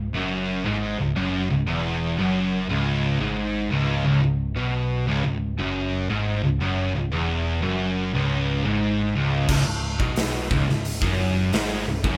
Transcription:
0.00 0.11 C#1 medium
0.13 0.61 F#1 medium
0.13 0.64 F#2 loud
0.65 0.97 G#1 medium
0.65 0.98 G#2 loud
0.99 1.15 C#1 medium
0.99 1.15 C#2 medium
1.16 1.48 F#1 loud
1.16 1.49 F#2 loud
1.50 1.66 C#1 medium
1.50 1.67 C#2 medium
1.67 2.15 E1 loud
1.67 2.18 E2 loud
2.18 2.66 F#1 loud
2.18 2.69 F#2 loud
2.68 3.16 C#1 loud
2.68 3.19 C#2 loud
3.19 3.67 G#1 loud
3.19 3.71 G#2 loud
3.70 4.02 C#1 loud
3.70 4.04 C#2 loud
4.05 4.21 C#1 medium
4.05 4.21 C#2 loud
4.22 4.54 C#1 medium
4.22 4.50 C#2 medium
4.55 5.03 B1 medium
4.55 5.06 B2 medium
5.07 5.23 C#1 medium
5.07 5.23 C#2 loud
5.25 5.56 C#1 medium
5.25 5.52 C#2 medium
5.59 6.06 F#1 medium
5.59 6.09 F#2 loud
6.09 6.41 G#1 loud
6.09 6.42 G#2 loud
6.43 6.59 C#1 medium
6.43 6.60 C#2 medium
6.60 6.92 F#1 medium
6.60 6.93 F#2 loud
6.95 7.11 C#1 medium
6.95 7.11 C#2 medium
7.12 7.59 E1 loud
7.12 7.62 E2 loud
7.63 8.11 F#1 loud
7.63 8.13 F#2 loud
8.13 8.61 C#1 loud
8.13 8.64 C#2 loud
8.65 9.12 G#1 loud
8.65 9.15 G#2 loud
9.15 9.47 C#1 loud
9.15 9.48 C#2 medium
9.49 9.65 C#1 medium
9.49 9.66 C#2 loud
9.49 kick loud
9.49 crash loud
9.66 9.98 C#1 medium
9.66 9.94 C#2 medium
10.00 10.48 B1 medium
10.00 10.51 B2 loud
10.00 kick loud
10.16 snare loud
10.16 open hi-hat medium
10.50 10.67 C#1 medium
10.50 10.68 C#2 loud
10.50 kick loud
10.68 11.00 C#1 medium
10.68 10.96 C#2 medium
10.68 snare soft
10.85 open hi-hat medium
11.02 11.50 F#1 medium
11.02 11.53 F#2 loud
11.02 kick loud
11.53 11.85 G#1 medium
11.53 11.87 G#2 loud
11.53 snare loud
11.53 open hi-hat medium
11.87 12.03 C#1 medium
11.87 12.04 C#2 medium
12.04 12.17 F#1 medium
12.04 12.17 F#2 loud
12.04 kick loud

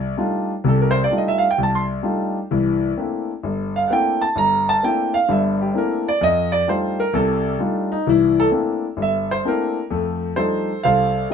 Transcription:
0.00 0.13 C2 medium
0.17 0.51 G3 medium
0.17 0.51 A3 medium
0.17 0.51 D4 medium
0.17 0.51 D#4 medium
0.17 0.51 F4 medium
0.64 1.05 C2 medium
0.64 1.05 C3 medium
0.68 0.82 A4 medium
0.81 0.96 A#4 medium
0.91 1.01 C5 loud
1.04 1.11 D5 medium
1.11 1.44 G3 medium
1.11 1.44 A3 medium
1.11 1.44 D4 soft
1.11 1.44 D#4 medium
1.11 1.44 F4 medium
1.18 1.30 D#5 medium
1.28 1.43 E5 medium
1.38 1.48 F5 medium
1.51 1.58 G5 medium
1.58 1.98 C2 medium
1.63 1.76 A5 medium
1.75 1.84 C6 medium
2.03 2.36 G3 medium
2.03 2.37 A3 medium
2.03 2.36 D4 medium
2.03 2.37 D#4 medium
2.03 2.37 F4 medium
2.51 2.91 C2 medium
2.51 2.91 E3 medium
2.97 3.30 A3 medium
2.97 3.30 A#3 soft
2.97 3.30 C4 soft
2.97 3.30 D4 soft
2.97 3.30 E4 medium
3.43 3.84 G1 medium
3.76 3.90 F5 medium
3.88 4.23 A3 medium
3.88 4.23 A#3 soft
3.88 4.23 C4 medium
3.88 4.23 D4 soft
3.88 4.23 E4 medium
3.88 3.91 F#5 medium
3.93 4.21 G5 loud
4.21 4.36 A5 medium
4.36 4.76 G1 medium
4.36 4.67 A#5 loud
4.69 4.83 A5 loud
4.83 5.15 A3 medium
4.83 5.15 A#3 medium
4.83 5.15 C4 medium
4.83 5.16 D4 medium
4.83 5.16 E4 medium
4.83 5.14 G5 medium
5.14 5.28 F5 loud
5.29 5.69 G1 medium
5.29 5.69 G2 medium
5.29 5.60 E5 medium
5.61 5.75 G4 medium
5.74 6.07 A3 medium
5.74 6.07 A#3 medium
5.74 6.07 C4 soft
5.74 6.08 D4 medium
5.74 6.08 E4 medium
5.74 6.07 A#4 medium
6.08 6.22 D5 medium
6.21 6.61 F2 medium
6.21 6.53 D#5 loud
6.52 6.67 D5 loud
6.68 7.00 G3 medium
6.68 7.00 A3 medium
6.68 7.00 D4 soft
6.68 7.01 D#4 soft
6.68 7.00 F4 medium
6.68 6.99 C5 medium
7.00 7.14 A#4 loud
7.13 7.54 C2 medium
7.13 7.54 C3 medium
7.13 7.57 A4 medium
7.59 7.92 G3 medium
7.59 7.93 A3 medium
7.59 7.92 D4 medium
7.59 7.90 D#4 medium
7.59 7.93 F4 medium
7.92 8.06 D#4 medium
8.07 8.47 C2 medium
8.07 8.47 E3 medium
8.07 8.38 E4 medium
8.40 8.48 A4 loud
8.51 8.85 A3 medium
8.51 8.85 A#3 medium
8.51 8.85 C4 medium
8.51 8.85 D4 medium
8.51 8.85 E4 medium
8.97 9.38 G1 medium
9.02 9.31 E5 medium
9.31 9.45 C5 medium
9.45 9.78 A3 medium
9.45 9.78 A#3 medium
9.45 9.78 C4 medium
9.45 9.78 D4 medium
9.45 9.78 E4 medium
9.45 9.83 A#4 medium
9.90 10.31 F2 medium
9.90 10.31 A3 medium
10.36 10.69 F3 soft
10.36 10.70 G3 soft
10.36 10.70 A3 soft
10.36 10.70 D4 soft
10.36 10.70 D#4 medium
10.36 10.83 A4 medium
10.36 10.80 C5 medium
10.83 11.24 C2 medium
10.83 11.34 A4 medium
10.83 11.34 C5 medium
10.83 11.27 F5 loud
11.30 11.34 F3 medium
11.30 11.34 G3 soft
11.30 11.34 D4 medium
11.30 11.34 D#4 medium

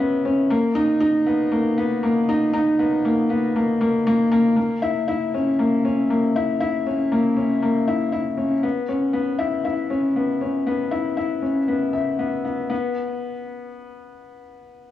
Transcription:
0.00 0.52 B3 medium
0.00 0.25 C#4 medium
0.00 0.52 E4 loud
0.25 0.49 C#4 medium
0.50 0.74 A#3 medium
0.75 0.99 D#4 loud
1.01 1.25 D#4 loud
1.26 1.41 B3 medium
1.52 1.76 A#3 medium
1.78 2.02 B3 medium
2.03 2.27 A#3 medium
2.29 2.52 D#4 loud
2.54 2.78 D#4 loud
2.79 2.94 B3 medium
3.05 3.29 A#3 medium
3.30 3.54 B3 medium
3.56 3.79 A#3 medium
3.81 4.05 A#3 medium
4.07 4.21 A#3 loud
4.32 4.55 A#3 medium
4.56 4.81 A#3 medium
4.82 5.06 E4 loud
5.08 5.32 E4 medium
5.34 5.48 C#4 medium
5.59 5.83 A#3 medium
5.85 6.09 C#4 medium
6.10 6.34 A#3 medium
6.36 6.59 E4 medium
6.60 6.84 E4 medium
6.87 7.01 C#4 medium
7.12 7.36 A#3 medium
7.37 7.61 C#4 medium
7.63 7.86 A#3 medium
7.88 8.11 E4 medium
8.12 8.37 E4 medium
8.37 8.52 C#4 medium
8.63 8.88 B3 medium
8.89 9.13 C#4 medium
9.13 9.38 B3 medium
9.39 9.63 E4 medium
9.65 9.89 E4 medium
9.90 10.05 C#4 medium
10.16 10.40 B3 medium
10.41 10.66 C#4 medium
10.67 10.91 B3 medium
10.91 11.15 E4 medium
11.17 11.42 E4 medium
11.42 11.57 C#4 medium
11.68 11.93 B3 medium
11.93 12.18 E5 medium
12.19 12.43 B3 medium
12.45 12.68 B3 medium
12.70 12.94 B3 medium

